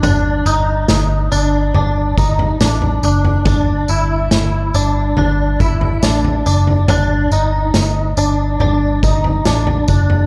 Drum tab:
TB |x-x-x-x---x-x-x-|x-x-x-x---x-x-x-|x-x-x-x---x-x-x-|
SD |----o-------o---|----o-------o---|----o-------o---|
FT |o-------o--o-o-o|o-------o--o-o-o|o-------o--o-o-o|
BD |----------o-----|o---------o-----|----------o---o-|